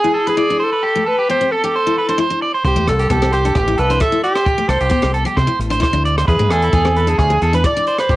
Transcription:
Already playing: clean electric guitar G#4, alto saxophone G#4
0.04 steel-string acoustic guitar E4
0.14 clean electric guitar A4
0.27 steel-string acoustic guitar D4, alto saxophone G#4, clean electric guitar B4
0.37 steel-string acoustic guitar E4, clean electric guitar D5
0.50 steel-string acoustic guitar D4
0.60 alto saxophone A4, clean electric guitar C5
0.73 clean electric guitar B4
0.83 clean electric guitar G4
0.95 steel-string acoustic guitar A3
1.06 clean electric guitar A4, alto saxophone B4
1.18 clean electric guitar G4
1.29 steel-string acoustic guitar B3, clean electric guitar G4, alto saxophone C5
1.41 steel-string acoustic guitar C4
1.52 alto saxophone A4, clean electric guitar A4
1.64 steel-string acoustic guitar D4, clean electric guitar G4
1.76 clean electric guitar C5
1.87 steel-string acoustic guitar E4
1.98 clean electric guitar B4
2.09 steel-string acoustic guitar D4, clean electric guitar C5
2.18 steel-string acoustic guitar E4, clean electric guitar C5
2.31 steel-string acoustic guitar D4
2.42 clean electric guitar D5
2.55 clean electric guitar C5
2.65 fingered electric bass C2, alto saxophone G4, clean electric guitar C5, kick, closed hi-hat
2.76 fingered electric bass E2, steel-string acoustic guitar A3
2.87 fingered electric bass C2, alto saxophone A4, cross-stick, closed hi-hat
2.99 clean electric guitar G4, closed hi-hat
3.10 fingered electric bass C2, steel-string acoustic guitar B3, alto saxophone G4, clean electric guitar A4, kick, closed hi-hat
3.22 steel-string acoustic guitar C4, cross-stick
3.32 alto saxophone G4, clean electric guitar C5, closed hi-hat
3.45 steel-string acoustic guitar D4, clean electric guitar A4, closed hi-hat
3.55 fingered electric bass A1, clean electric guitar G4, kick, cross-stick, closed hi-hat
3.68 steel-string acoustic guitar E4
3.78 fingered electric bass C2, clean electric guitar A4, alto saxophone B4, closed hi-hat
3.90 steel-string acoustic guitar D4, clean electric guitar C5, closed hi-hat
4.00 steel-string acoustic guitar E4, alto saxophone A4, clean electric guitar E5, kick, cross-stick, closed hi-hat
4.12 steel-string acoustic guitar E4
4.23 alto saxophone G4, clean electric guitar D5, closed hi-hat
4.35 clean electric guitar C5, cross-stick, closed hi-hat
4.45 clean electric guitar G4, kick, closed hi-hat
4.58 steel-string acoustic guitar A3
4.69 fingered electric bass C2, clean electric guitar A4, alto saxophone C5, cross-stick, closed hi-hat
4.81 fingered electric bass C2, clean electric guitar G4, closed hi-hat
4.90 steel-string acoustic guitar B3, clean electric guitar G4, kick, closed hi-hat
5.02 fingered electric bass C2, steel-string acoustic guitar C4, cross-stick
5.14 clean electric guitar A4, closed hi-hat
5.25 steel-string acoustic guitar G3, clean electric guitar G4, closed hi-hat
5.37 fingered electric bass C3, clean electric guitar C5, kick, cross-stick, closed hi-hat
5.47 steel-string acoustic guitar E4
5.59 fingered electric bass A1, closed hi-hat
5.70 steel-string acoustic guitar D4, clean electric guitar C5, closed hi-hat
5.80 steel-string acoustic guitar E4, clean electric guitar C5, kick, cross-stick, closed hi-hat
5.93 fingered electric bass D2, steel-string acoustic guitar D4
6.05 clean electric guitar D5, closed hi-hat
6.18 clean electric guitar C5, cross-stick, closed hi-hat
6.28 fingered electric bass E2, alto saxophone G#4, clean electric guitar B4, kick, closed hi-hat
6.39 fingered electric bass G#2, steel-string acoustic guitar A3
6.51 fingered electric bass E2, clean electric guitar G#4, alto saxophone A4, cross-stick, closed hi-hat
6.62 clean electric guitar E4, closed hi-hat
6.73 fingered electric bass E2, steel-string acoustic guitar B3, clean electric guitar G#4, kick, closed hi-hat
6.85 steel-string acoustic guitar C4, cross-stick
6.96 clean electric guitar B4, closed hi-hat
7.07 steel-string acoustic guitar D4, alto saxophone G#4, clean electric guitar A4, closed hi-hat
7.18 fingered electric bass D2, clean electric guitar G#4, kick, cross-stick, closed hi-hat
7.30 steel-string acoustic guitar G#4
7.41 fingered electric bass E2, clean electric guitar A4, closed hi-hat
7.53 steel-string acoustic guitar D4, clean electric guitar B4, alto saxophone B4, closed hi-hat
7.64 steel-string acoustic guitar E4, clean electric guitar D5, alto saxophone D5, kick, cross-stick, closed hi-hat
7.76 steel-string acoustic guitar D4
7.87 clean electric guitar C5, closed hi-hat
7.98 clean electric guitar B4, alto saxophone C5, cross-stick, closed hi-hat
8.09 fingered electric bass A1, clean electric guitar G4, kick, closed hi-hat

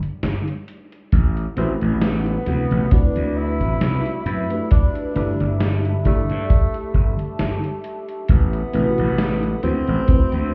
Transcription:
0.03 muted slap bass stroke, closed hi-hat
0.23 slap bass G1, snare, closed hi-hat
0.48 closed hi-hat
0.68 closed hi-hat
0.92 closed hi-hat
1.12 slap bass A1, ambient pad A4 F#5 B5, kick, closed hi-hat
1.37 closed hi-hat
1.56 slap bass A1, fm electric piano A3 C4 E4 F#4 B4, tenor saxophone C4, closed hi-hat
1.81 slap bass A1, closed hi-hat
2.02 tenor saxophone B3, snare, closed hi-hat
2.26 closed hi-hat
2.46 slap bass D2, fm electric piano C3 A3 E4 F#4 B4, ambient pad F#4 E5, closed hi-hat
2.71 slap bass A1, closed hi-hat
2.90 fm electric piano A3 C4 E4 F#4 B4, tenor saxophone D4, muted slap bass stroke, kick, closed hi-hat
3.16 slap bass D2, closed hi-hat
3.37 tenor saxophone E4
3.60 slap bass A1, closed hi-hat
3.81 slap bass C2, snare, closed hi-hat
4.06 closed hi-hat
4.26 slap bass F#2, tenor saxophone E4, closed hi-hat
4.49 fm electric piano A3 D4 E4 G4 B4, closed hi-hat
4.71 tenor saxophone D4, ambient pad G4 E5 A5, kick, closed hi-hat
4.95 closed hi-hat
5.15 slap bass G1, fm electric piano A3 D4 E4 G4 B4, tenor saxophone D4, closed hi-hat
5.40 slap bass G1, closed hi-hat
5.60 snare, closed hi-hat
5.85 closed hi-hat
6.05 slap bass G1, fm electric piano A3 D4 E4 G4 D5, tenor saxophone A3, kick, closed hi-hat
6.30 slap bass G2, closed hi-hat
6.50 ambient pad E5, kick, closed hi-hat
6.74 closed hi-hat
6.94 slap bass G1, kick
7.19 muted slap bass stroke, closed hi-hat
7.39 slap bass G1, snare, closed hi-hat
7.64 closed hi-hat
7.84 closed hi-hat
8.09 closed hi-hat
8.29 slap bass A1, tenor saxophone B3, ambient pad A4 F#5 B5, kick, closed hi-hat
8.53 closed hi-hat
8.73 slap bass A1, fm electric piano C3 A3 E4 F#4 B4, closed hi-hat
8.98 slap bass A1, closed hi-hat
9.18 snare, closed hi-hat
9.43 closed hi-hat
9.63 slap bass D2, fm electric piano A3 C4 E4 F#4 B4, tenor saxophone C4, ambient pad F#4 E5, closed hi-hat
9.87 slap bass A1, closed hi-hat
10.07 fm electric piano A3 C4 E4 F#4 B4, muted slap bass stroke, kick, closed hi-hat
10.32 slap bass D2, closed hi-hat

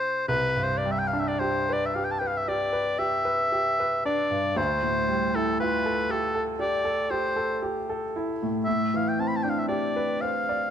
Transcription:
Already playing: grand piano C2 E3 C4 G4 A4, oboe C5
0.28 grand piano C2, oboe B4
0.56 grand piano G2
0.63 oboe C5
0.78 oboe D5
0.85 grand piano G3
0.91 oboe E5
0.99 oboe G5
1.07 oboe F5
1.13 grand piano D4
1.19 oboe E5
1.28 oboe D5
1.39 grand piano G4, oboe C5
1.69 grand piano B4, oboe D5
1.86 oboe E5
1.95 grand piano G4, oboe F5
2.04 oboe G5
2.11 oboe A5
2.19 grand piano B4, oboe G5
2.27 oboe F5
2.37 oboe E5
2.48 grand piano G4, oboe D5
2.73 grand piano B4
2.99 grand piano G4, oboe E5
3.25 grand piano B4
3.52 grand piano G4
3.80 grand piano B4
4.05 grand piano D4, oboe D5
4.30 grand piano G2
4.56 grand piano D2, oboe C5
4.82 grand piano A2
5.09 grand piano G3
5.35 grand piano E4, oboe A4
5.60 grand piano F4, oboe B4
5.85 grand piano A4
6.10 grand piano G4, oboe A4
6.35 grand piano A4
6.59 grand piano G4, oboe D5
6.84 grand piano A4
7.10 grand piano G4, oboe C5
7.36 grand piano A4
7.62 grand piano G4
7.89 grand piano A4
8.16 grand piano E4
8.42 grand piano A2
8.65 grand piano A2, oboe E5
8.94 grand piano E3, oboe F5
9.08 oboe G5
9.19 grand piano C4, oboe A5
9.28 oboe B5
9.36 oboe A5
9.43 grand piano D4, oboe G5
9.50 oboe F5
9.59 oboe E5
9.68 grand piano G4, oboe D5
9.96 grand piano B4
10.21 grand piano C5, oboe F5
10.49 grand piano D5

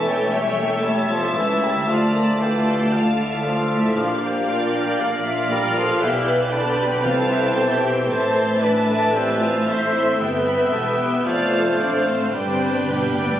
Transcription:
Already playing: double bass section E1, cello section E2, bassoon E3, viola section A3 A4, french horn section C#4, violin section C#5 E5, cor anglais A5
0.05 clarinet C#5, flute E5, violin section G5
0.33 viola section G3, bassoon A3, clarinet C#5, flute C#5, cor anglais E5
0.59 viola section A#3, flute A4
0.84 bassoon G3, viola section A3, flute C#5, cor anglais E5, clarinet E5, violin section A5
1.10 bassoon F3, viola section G3
1.36 cello section C#2, double bass section C#2, bassoon E3, viola section A3 E4, flute E5, violin section E5
1.63 bassoon G3, viola section A#3, flute C#5
1.87 cello section D2, double bass section D2, bassoon F3, viola section A3 F4, french horn section F4, violin section D5 F5 A5, flute D5, cor anglais A5
2.13 french horn section A#4, violin section A#5
2.39 bassoon E3, viola section A3 F4, french horn section A4, flute F5, cor anglais G5
2.43 violin section A5
2.65 french horn section G4, violin section G5
2.91 bassoon D3, french horn section F4, viola section A4, flute D5, clarinet D5, violin section F5, cor anglais F5
3.20 french horn section E4, violin section E5
3.43 bassoon F3, french horn section F4, viola section A4, flute A4, violin section F5
3.71 french horn section E4, violin section E5
3.95 double bass section A#1, cello section A#2, bassoon F3, viola section A#3 G4, french horn section D4, flute A#4, clarinet D5, violin section D5, cor anglais F5
4.21 viola section A#3, bassoon A#3, flute C5
4.47 viola section F4, clarinet A#4, flute D5, violin section F5, cor anglais G5
4.73 viola section F4
4.99 viola section G4, violin section D5, flute F5, cor anglais F5
5.24 viola section F4, flute E5
5.51 bassoon G3, viola section F4 A#4, clarinet A#4, flute D5, violin section F5
5.76 bassoon F3, viola section A4, flute F5
6.00 double bass section B1, cello section B2, bassoon E3, viola section E4 G4, french horn section G4, clarinet B4, violin section D5 G5, flute E5
6.26 french horn section B4, violin section B5
6.50 bassoon D3, viola section D4 G4, french horn section A4, flute D5, cor anglais G5, violin section A5 B5
6.77 french horn section G4, violin section G5
7.02 double bass section C2, cello section C3, timpani C3, bassoon G3, viola section C4 A4, french horn section F4, flute C5, violin section F5 A5, cor anglais G5
7.29 french horn section E4, violin section E5
7.56 double bass section B1, cello section B2, bassoon E3, viola section G4, french horn section A4, clarinet C5, violin section E5 G5 A5
7.82 french horn section G4, violin section G5
8.08 double bass section A1, cello section A2, viola section C4 C5, french horn section A4, flute C5, clarinet C5, violin section E5 A5, cor anglais A5
8.35 french horn section C5, violin section C6
8.60 bassoon E3, viola section D4 B4, french horn section B4, clarinet D5, flute E5, cor anglais A5, violin section B5
8.87 french horn section A4, violin section A5
9.12 bassoon E3, viola section C4, french horn section G4, clarinet C5, flute D5, cor anglais E5, violin section G5 A5
9.39 french horn section F4, violin section F5
9.66 bassoon A3, viola section C4 A4, french horn section E4, clarinet C5, flute C5, violin section C5 E5 C6, cor anglais E5
9.92 french horn section E4, violin section E5
10.19 double bass section G1, cello section G2, bassoon B3, french horn section G4, flute B4, clarinet B4, cor anglais E5, violin section E5 G5
10.47 french horn section B4, violin section B5
10.72 double bass section E1, cello section E2, viola section B3 G4, french horn section A4, violin section A5
10.99 french horn section G4, violin section G5
11.24 double bass section F1, cello section F2, bassoon A3, french horn section F4, viola section A4, clarinet C5, violin section D5 F5 A5, flute D5, cor anglais F5
11.53 violin section C5
11.78 double bass section A1, cello section A2, viola section C4, french horn section D4, flute C5, violin section D5 F5
12.06 french horn section C4, violin section C5
12.33 double bass section G1, cello section G2, timpani G2, bassoon G3, french horn section C4, viola section D4 G4, violin section B4 C5 G5, flute B4, clarinet D5, cor anglais G5
12.43 timpani G2
12.51 timpani G2
12.59 timpani G2
12.67 timpani G2
12.74 timpani G2
12.83 timpani G2
12.90 timpani G2, cello section B2, bassoon G3, french horn section B3, violin section B4, clarinet D5, cor anglais G5
12.99 timpani G2
13.07 timpani G2
13.15 timpani G2
13.19 timpani G2, cello section A2
13.30 timpani G2

